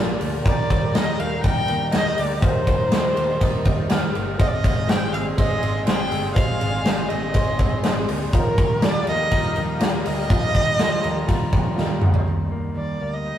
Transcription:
Already playing: A#1 A#2 F3 A#3 D4 F4 A#4 D5 F5 G5 C6 D6
0.09 F3 A#3 D4 A#4
0.21 D2 A#3, open hi-hat, ride
0.44 D#2 D#3 G3 A#3 D#4 G4 A#4 D5 A#5, kick, hi-hat pedal, ride
0.49 G4
0.70 D#2 G3, kick, ride
0.82 A#3 D#4 G4
0.94 D#2 D#4 G4 A#4 D#5, snare, ride
1.19 D#2 D#3 G3 A#3 D#4 G4 F5, ride
1.43 D#2 G3 G4 A#4 D#5 G5, kick, ride
1.67 D#2 D#3 G3 A#3 D#4 G4, ride
1.92 D#2 G3 G4 A#4 D#5, snare, ride
2.05 A#3 D#4 G4
2.18 D2 A#3 D5, open hi-hat, ride
2.41 D#2 D#3 G3 A#3 D#4 G4 A#4 C5 D#5, kick, hi-hat pedal, ride
2.67 D#2 G3, kick, ride
2.79 A#3 D#4 G4
2.91 D#2 D#4 G4 A#4 D#5 D6, snare, ride
3.15 D#2 D#3 G3 A#3 D#4 G4, ride
3.40 D#2 G3 G4 A#4 D#5 D#6, kick, ride
3.64 D#2 D#3 G3 A#3 D#4 G4 G6, kick, ride
3.89 D#2 G3 G4 A#4 D#5 F6, snare, ride
4.01 A#3 D#4 G4
4.15 G1 A#3, ride
4.38 G#1 G#2 G#3 C4 D#4 G#4 C5 D#5 C6 D#6, kick, ride
4.48 D5
4.54 D#5
4.64 G#1 G#3, kick, ride
4.75 G#3 C4 D#4 G#4
4.87 G#1 D#4 G#4 C5 D#5 G5, snare, ride
5.12 G#1 G#2 D#3 G#3 C4 D#4 G#4 F5, ride
5.37 G#1 G#3 G#4 C5 D#5, kick, ride
5.61 G#1 G#2 D#3 G#3 C4 D#4 G#4, ride
5.86 G#1 G#3 G#4 C5 D#5 G5, snare, ride
5.98 G#3 C4 D#4 G#4
6.11 G1 C4, open hi-hat, ride
6.35 G#1 G#2 G#3 C4 D#4 G#4 C5 D#5 F5, kick, hi-hat pedal, ride
6.60 G#1 G#3, ride
6.72 G#3 C4 D#4 G#4
6.85 G#1 D#4 G#4 C5 D#5, snare, ride
7.09 G#1 G#2 D#3 G#3 C4 D#4 G#4 D#5, ride
7.34 G#1 G#3 G#4 C5 D#5 C6, kick, ride
7.58 G#1 G#2 D#3 G#3 C4 D#4 G#4, kick, ride
7.83 G#1 G#3 G#4 C5 D#5, snare, ride
7.96 G#3 C4 D#4 G#4
8.08 D2 A#3, open hi-hat, ride
8.21 C4
8.33 D#2 D#3 F3 A#3 D#4 F4 G4 A#4 D#5 F5 A#5 D#6, kick, hi-hat pedal, ride
8.58 D#2 G3, kick, ride
8.69 A#3 D#4 G4
8.82 D#2 F4 G4 D5 D#5, snare, ride
9.06 D#2 D#3 F3 A#3 D#4 G4 D#5, ride
9.31 D#2 G3 F4 G4 D#5 A#5, kick, ride
9.56 D#2 D#3 F3 A#3 D#4 G4, ride
9.79 D#2 G3 F4 G4 D#5, snare, ride
9.92 A#3 D#4 G4
10.05 D2 A#3 D#5, open hi-hat, ride
10.29 D#2 D#3 F3 A#3 D#4 F4 G4 D#5 F6, kick, hi-hat pedal, ride
10.54 D#2 G3, kick, ride
10.65 A#3 D#4 G4
10.78 D#2 F4 G4 D#5 C6, snare, ride
11.03 D#2 D#3 F3 A#3 D#4 G4 A#5, ride
11.27 D#2 G3 F4 G4 D#5 A#5, kick, ride
11.52 D#2 D#3 F3 G#3 A#3 D#4 G4 G5, kick, ride
11.65 A#3
11.76 D#2 G3 F4 G4 D#5, snare
11.88 A#3 D#4 G4
12.01 D2 G#3, mid tom
12.14 A#3, floor tom
12.24 D#2 D#3 G3 A#3 D#4
12.30 G4
12.52 D#2 A#3
12.76 D#2 G3 D5
13.01 D2 A#3
13.13 D#5
13.25 G3 A#3 D#4 G4

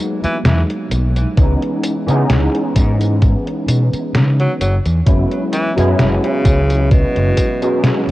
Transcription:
Already playing: F#3 G#3 A#3 B3 D#4
0.24 E3, muted fingered electric bass stroke, closed hi-hat, tambourine
0.45 E2 E3, snare, closed hi-hat, tambourine
0.70 closed hi-hat
0.91 B1, closed hi-hat, tambourine
1.16 closed hi-hat, tambourine
1.37 C#2 E3 G#3 B3 C#4 D#4, kick, closed hi-hat, tambourine
1.62 closed hi-hat
1.83 closed hi-hat, tambourine
2.07 C#3 E3 G#3 B3 C#4 D#4, closed hi-hat, tambourine
2.30 C#2, snare, closed hi-hat, tambourine
2.55 closed hi-hat
2.76 G#2, kick, closed hi-hat, tambourine
3.01 closed hi-hat, tambourine
3.22 kick, closed hi-hat, tambourine
3.47 closed hi-hat
3.68 B2, closed hi-hat, tambourine
3.93 muted fingered electric bass stroke, closed hi-hat, tambourine
4.15 C#3, snare, closed hi-hat, tambourine
4.40 F#3, closed hi-hat
4.60 F#1 F#3, closed hi-hat, tambourine
4.86 E2, closed hi-hat, tambourine
5.06 F#1 F#3 G#3 B3 C#4 E4, kick, closed hi-hat, tambourine
5.32 closed hi-hat
5.53 E3, closed hi-hat, tambourine
5.76 F#2 F#3 G#3 B3 C#4 E4, snare, closed hi-hat, tambourine
5.99 F#1, snare, closed hi-hat, tambourine
6.24 C#3, closed hi-hat
6.45 C#2, kick, closed hi-hat, tambourine
6.70 closed hi-hat, tambourine
6.91 B2, kick, closed hi-hat, tambourine
7.16 F#1, closed hi-hat
7.37 kick, closed hi-hat, tambourine
7.62 F#3 G#3 B3 C#4 F#4, closed hi-hat, tambourine
7.84 snare, closed hi-hat, tambourine

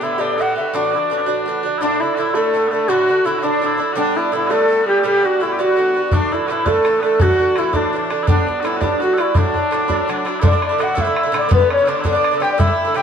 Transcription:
0.01 A2 D3 B3 E4 G4 E5
0.18 A2 D3 B3 D4 G4 D5
0.36 A2 D3 F#4 A4
0.41 B3 G4 F#5
0.56 D3 B3 G4 E5
0.73 A2 E3 D4 F#4 D5
0.91 D4 E4 F#4
0.96 E3 D4
1.10 A2 E3 D4 F#4
1.17 C#4 D4
1.26 A2 E3 D4 F#4
1.46 A2 E3 D4 F#4
1.63 E3 D4 F#4
1.78 A2 D3 D4 E4
1.83 D4 E4
2.00 D3 D4 E4
2.14 A2 D3 E4 F#4
2.19 D4 E4
2.34 A2 D3 A3 D4 E4 A4
2.53 A2 D3 D4 E4
2.67 A3 B3 E4
2.72 D3 D4 A4
2.88 A2 D3 D4 E4 F#4
3.08 D3 D4 E4
3.24 A2 D3 D4 E4
3.39 D4 E4 F#4
3.43 A2 D3 D4
3.62 A2 D3 D4 E4
3.66 E4
3.77 D3 D4 E4
3.92 A2 G3 D4 F#4
3.97 B3 D4
4.15 G3 B3 D4 E4
4.32 A2 G3 B3 D4 E4
4.47 A3 B3 D4 F#4 A4
4.51 A2 G3
4.69 A2 G3 B3 D4
4.82 D4 F#4
4.87 G3 B3 G4
5.00 A2 A3
5.04 G3 B3 D4 G4
5.23 G3 B3 D4 F#4
5.40 A2 G3 B3 D4 E4
5.52 G4
5.59 A2 G3 B3 D4 F#4
5.76 A2 G3 B3 D4
5.94 G3 B3 D4
6.11 A2 E3 A3 D4, bodhran
6.22 bodhran
6.31 E3 A3 D4 E4, bodhran
6.46 A2 E3 E4 F#4, bodhran
6.50 A3 D4 E4
6.66 A2 E3 A3 D4 A4, bodhran
6.84 A2 E3 A3 D4, bodhran
6.99 A3 B3 D4, bodhran
7.03 E3 A3 A4
7.20 A2 E3 A3 D4 F#4, bodhran
7.29 bodhran
7.38 E3 A3 D4, bodhran
7.56 A2 E3 A3 D4 E4, bodhran
7.73 A2 E3 A3 D4, bodhran
7.93 A2 E3 A3 D4
8.10 E3 A3 D4, bodhran
8.23 D4 E4
8.27 A2 G3 B3 D4, bodhran
8.38 bodhran
8.47 G3 B3 D4, bodhran
8.60 A2 D4 F#4
8.64 G3 B3 D4 E4, bodhran
8.76 F#4
8.80 A2 G3 B3 D4, bodhran
9.00 A2 G3 B3 D4 F#4
9.14 D4 A4
9.18 G3 B3 E4, bodhran
9.34 A2 F#3 D4 E4, bodhran
9.54 F#3 D4 E4, bodhran
9.71 A2 F#3 D4 E4, bodhran
9.88 A2 F#3 D4 E4, bodhran
10.08 A2 F#3 D4 E4, bodhran
10.25 F#3 D4 E4, bodhran
10.40 A2 D3 A3 D4 E4, bodhran
10.44 E4 D5
10.51 D3 A3 E4
10.62 D5, bodhran
10.69 D3 A3 E4
10.78 A2 D3 A3 E4 F#4, bodhran
10.83 F#5
10.95 A2 D3 A3 E4 A4, bodhran
11.01 E4 E5
11.07 D3 A3
11.16 bodhran
11.23 D3 A3 E4
11.32 A2 D3 A3 E4, bodhran
11.38 D5
11.49 G2 D3 B3 D4, bodhran
11.53 B4
11.58 D3 B3 D4
11.70 C#4 C#5, bodhran
11.77 D3 B3 D4
11.85 G2 D3 B3 E4, bodhran
11.89 D4 D5
12.01 G2 D3 E4, bodhran
12.05 B3 D4 D5
12.12 D3 B3 D4
12.24 bodhran
12.31 D3 B3 D4
12.38 G2 D3 A4 G5, bodhran
12.42 B3 D4 G4
12.52 D5
12.58 A2 D3 A3 E4 E5, bodhran
12.67 D3 A3 E4
12.85 D3 A3 E4
12.94 A2 D3 A3 E4 G4 G5, bodhran

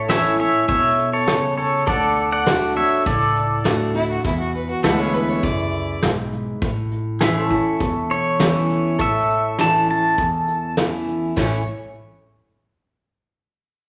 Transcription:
Already playing: A1 A2 A4 C#5 E5
0.09 E3 A3 C#4 E4 C#5 E5, snare, closed hi-hat
0.38 C#4 E4 C#5 E5, closed hi-hat
0.68 E1 B2 C#5 E5, kick, closed hi-hat
0.98 closed hi-hat
1.13 A4 C#5
1.28 C#3, snare, closed hi-hat
1.58 A4 C#5, closed hi-hat
1.87 D2 D3 A4 D5 F#5, kick, closed hi-hat
2.17 closed hi-hat
2.32 D5 F#5
2.46 D3 A3 D4 F#4, snare, closed hi-hat
2.76 D4 F#4 C#5 E5, closed hi-hat
3.06 C#2 A2 A4 D5, kick, closed hi-hat
3.36 closed hi-hat
3.64 D2 D3 A3 D4 F#4, snare, closed hi-hat
3.95 D4 E4 F#4, closed hi-hat
4.10 F#4
4.24 E2 E4, kick, closed hi-hat
4.40 F#4
4.54 B4, closed hi-hat
4.70 F#4
4.83 D2 D3 G#3 B3 E4 A4 B4 F#5, snare, closed hi-hat
4.99 C#5
5.04 G#4
5.11 B4 E5, closed hi-hat
5.29 C#5
5.43 C#2 F#2 D5, kick, closed hi-hat
5.73 closed hi-hat
6.03 B1 G#2, snare, closed hi-hat
6.32 closed hi-hat
6.62 A1 A2, kick, closed hi-hat
6.91 closed hi-hat
7.21 E3 A3 C#4 E4 G#4 B4 E5, snare, closed hi-hat
7.41 A4
7.47 E4 C#5, kick, closed hi-hat
7.52 C#4
7.80 E1 E2, kick, closed hi-hat
8.10 C#5, closed hi-hat
8.39 E3 A3 C#4 E4, snare, closed hi-hat
8.70 closed hi-hat
8.99 A1 A2 A4 C#5 E5, kick, closed hi-hat
9.29 closed hi-hat
9.58 E3 A3 C#4 E4 A5, snare, closed hi-hat
9.88 C#4 E4 A5, closed hi-hat
10.18 E2, kick, closed hi-hat
10.48 closed hi-hat
10.77 E3 A3 C#4 E4, snare, closed hi-hat
11.07 closed hi-hat
11.36 A1 A2 E3 A3 C#4 E4 C#5, kick, snare, crash

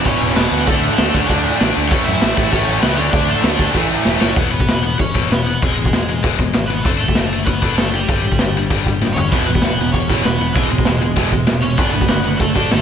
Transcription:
Already playing: E2 B2 E3
0.05 E1 E2 B2 E3 C#4 C#5, kick, crash
0.21 E1, crash
0.36 E1 E2 B2 E3 B3 B4, snare, crash
0.51 D2, crash
0.67 D2 D3 A3 D4 A4, kick, crash
0.83 crash
0.92 A3 A4
0.98 D2, snare, crash
1.14 D2 D3 A3 C#4 D4 C#5, kick, crash
1.27 D2 D3 A3 D4 D5, kick, crash
1.32 D4
1.45 crash
1.59 A1 D3 A3 D4, snare, crash
1.76 D2, crash
1.89 A1 A2 E3 A3 C#4 C#5, kick, crash
2.06 F#2 E4 E5, crash
2.22 A1, snare, crash
2.36 A1 A2 E3 A3, kick, crash
2.52 A1 A2 E3 A3 C#4 C#5, kick, crash
2.67 A1, crash
2.81 C#2 A2 E3 A3 B3 B4, snare, crash
2.96 D2 D3 A3 C#4 D4 C#5, crash
3.12 D2 D4 D5, kick, crash
3.28 A3 A4, crash
3.43 D2 D3 A3 D4, snare, crash
3.57 D2 D3 A3 D4, kick, crash
3.73 A1 A2 E3 A3, kick, crash
3.89 crash
4.05 E1, snare
4.19 F#1 A2 E3 A3 C#4 C#5, snare
4.35 E1 E2 B2 E3 B3 B4, kick, open hi-hat
4.51 E1 E2 B2 B3 B4
4.60 kick
4.67 E1 E2 B2, snare, open hi-hat
4.83 E2 B2
4.98 E1 E2 B2 C#4 C#5, kick, open hi-hat
5.14 E1 E2 B2 E3, kick
5.30 E1 E2 B2 B3 B4, snare, open hi-hat
5.46 E2 B2
5.62 E1 E2 B2 E3 G#3 G#4, kick, open hi-hat
5.77 E1 E2 B2
5.85 kick
5.92 E1 E2 B2, snare, open hi-hat
6.09 E2 B2
6.23 E1 E2 B2 E3, kick, open hi-hat
6.39 E1 E2 B2, kick
6.53 G#1 E2 B2, snare, open hi-hat
6.68 E2 B2 B3 B4
6.83 F#1 D3 A3 A4, kick, open hi-hat
6.88 D4
6.98 F#1 D3 A3 A4
7.02 A3
7.08 kick
7.15 F#1 D3 A3, snare, open hi-hat
7.33 D3 A3
7.45 F#1 D3 A3 B3 B4, kick, open hi-hat
7.62 F#1 D3 A3 D4, kick
7.76 F#1 D3 A3 A4, snare, open hi-hat
7.92 D3 G3 A3 G4
8.08 G1 G2 D3 G3, kick, open hi-hat
8.24 G1 G2 D3
8.32 kick
8.39 G1 G2 D3, snare, open hi-hat
8.57 G2 D3
8.70 G1 G2 D3 G3, kick, open hi-hat
8.86 G1 G2 D3, kick
9.01 G1 G2 D3, snare
9.14 G2 D3 C#4 C#5, floor tom
9.28 E1 B3 B4, kick, crash
9.33 E2 B2 E3
9.46 E1 E2 B2 B3 B4
9.55 kick
9.62 E1 E2 B2, snare, open hi-hat
9.81 E2 B2
9.92 E1 E2 B2 C#4 C#5, kick, open hi-hat
10.10 E1 E2 B2 E3, kick
10.23 E1 E2 B2 B3 B4, snare, open hi-hat
10.41 E2 B2
10.55 E1 E2 B2 E3 G#3 G#4, kick, open hi-hat
10.71 E1 E2 B2
10.78 kick
10.85 E1 E2 B2, snare, open hi-hat
11.01 E2 B2
11.16 E1 E2 B2 E3, kick, open hi-hat
11.31 E1 E2 B2, kick
11.47 E1 E2 B2, snare, open hi-hat
11.62 E2 B2 C#4 C#5
11.77 F#1 D3 A3 B3 D4 B4, kick, open hi-hat
11.93 F#1 D3 A3 B3 B4
12.01 kick
12.08 F#1 D3 A3, snare, open hi-hat
12.24 D3 A3
12.39 F#1 D3 A3 A4, kick, open hi-hat
12.54 F#1 D3 A3 D4 A4, kick
12.71 G#1 D3 A3 A4, snare, open hi-hat

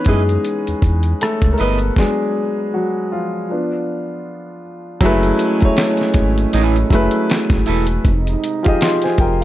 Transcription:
Already playing: E3 B3 C#4 D#4 B4 C#5 D#5
0.05 F#2 E4 G#4 B4, kick, closed hi-hat
0.09 G#3 D#5
0.29 closed hi-hat
0.45 closed hi-hat
0.67 E2, closed hi-hat
0.82 E2, kick, closed hi-hat
1.03 closed hi-hat
1.21 A3 A4, muted clean electric guitar stroke, cross-stick, closed hi-hat
1.42 C#2, kick, cross-stick, closed hi-hat
1.53 A#4
1.58 G1 B3 E4 B4 D#5, open hi-hat
1.79 closed hi-hat
1.96 F#3 G#3 B3 D4 G#4, kick, snare
2.74 F#3 F#4
3.12 F3 F4
3.50 F3 B3 D4
5.00 F#1 F#3 G#3 A3 C#4 E4 G#4, kick, closed hi-hat
5.04 A3 B4
5.23 closed hi-hat
5.39 closed hi-hat
5.60 F#3 A3 E4 G#4, kick, closed hi-hat
5.65 C#5
5.77 snare, closed hi-hat
5.97 snare, closed hi-hat
6.14 G#1, kick, closed hi-hat
6.38 closed hi-hat
6.53 A1 E4 A4 B4, closed hi-hat
6.76 closed hi-hat
6.90 F#1 F#3 A3 E4 G#4, kick, closed hi-hat
6.95 B4
7.11 closed hi-hat
7.30 muted clean electric guitar stroke, snare, closed hi-hat
7.50 G#1, kick, snare, closed hi-hat
7.66 E1 E4 A4 B4, open hi-hat
7.87 closed hi-hat
8.04 F1 C3 G#3 D#4, kick, closed hi-hat
8.27 closed hi-hat
8.44 closed hi-hat
8.63 F3 F4 G4 G#4, kick, closed hi-hat
8.68 D#5
8.81 D#5 C6, snare, closed hi-hat
9.02 C5 G#5, snare, closed hi-hat
9.18 F1 A#4 G5, kick, closed hi-hat
9.41 F5

